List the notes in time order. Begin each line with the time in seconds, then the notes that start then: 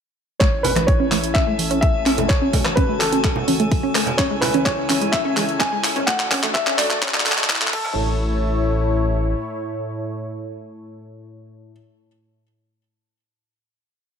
0.40 A1 A3 C#4 E4 A4 C#5 G#5, kick, clap, closed hi-hat
0.63 C#4 B4, open hi-hat, low conga, high woodblock
0.76 A3, cross-stick, clap, closed hi-hat, high conga
0.87 C#5, kick, closed hi-hat
1.00 C#4
1.12 A3, clap, open hi-hat, high conga
1.24 closed hi-hat
1.34 C#4 E5, kick, clap, closed hi-hat
1.47 A3
1.59 open hi-hat, high conga
1.71 C#4, closed hi-hat
1.81 A3 E5, kick, closed hi-hat
2.06 C#4, clap, open hi-hat, high woodblock
2.18 A3, closed hi-hat, low conga
2.28 F#1 F#4 C#5, kick, clap, closed hi-hat
2.42 C#4
2.53 A3, kick, open hi-hat, low conga, high woodblock
2.65 cross-stick, clap, closed hi-hat, high conga
2.76 C#4 B4, kick, closed hi-hat
2.89 A3
2.99 A4, clap, open hi-hat, high conga
3.12 C#4, closed hi-hat
3.24 A3, kick, clap, closed hi-hat, high woodblock
3.36 low conga
3.48 C#4, open hi-hat, high conga
3.60 A3, closed hi-hat
3.71 kick, open hi-hat
3.83 C#4
3.95 A3, cross-stick, clap, open hi-hat
4.06 closed hi-hat, low conga, high woodblock
4.17 C#2 C#3 C#4 E4 C#5 G#5, kick, clap, closed hi-hat
4.31 G#3
4.41 B4, clap, open hi-hat, low conga, high woodblock
4.54 C#4, closed hi-hat, high conga
4.65 G#3 C#5, kick, clap, closed hi-hat
4.90 C#4, clap, open hi-hat, high conga
5.02 G#3, closed hi-hat
5.12 E5, kick, clap, closed hi-hat
5.25 C#4
5.37 G#3, clap, open hi-hat, high conga
5.49 closed hi-hat
5.59 C#4 G#5, kick, clap, closed hi-hat
5.72 G#3
5.84 clap, open hi-hat, high woodblock
5.96 C#4, closed hi-hat, low conga
6.07 D2 D3 A3 D4 F#4 A4 F#5, kick, clap, closed hi-hat
6.20 clap
6.31 C#4, kick, clap, open hi-hat, low conga, high woodblock
6.43 A3, clap, closed hi-hat, high conga
6.54 E5, kick, clap, closed hi-hat
6.67 C#4, clap
6.78 A3 D5, clap, open hi-hat, high conga
6.91 clap, closed hi-hat
7.02 C#4, kick, clap, closed hi-hat, high woodblock
7.08 clap
7.14 A3, clap, low conga
7.20 clap
7.25 A4, clap, open hi-hat, high conga
7.32 clap
7.38 G#3, clap, closed hi-hat
7.44 clap
7.50 E4, kick, clap, open hi-hat
7.55 clap
7.61 A3, clap
7.67 clap
7.73 A1 A2 A3 E4 A4 C#5, kick, crash
7.85 low conga, high woodblock